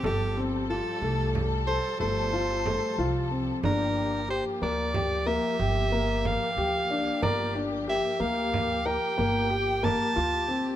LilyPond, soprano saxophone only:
\new Staff \with { instrumentName = "Soprano saxophone" } { \time 11/8 \key g \dorian \tempo 4 = 92 g'8 r8 a'4 r8 c''8 c''2 r8 | bes'4 c''8 d''4 e''4. f''4. | d''8 r8 e''8 f''4 g''4. a''4. | }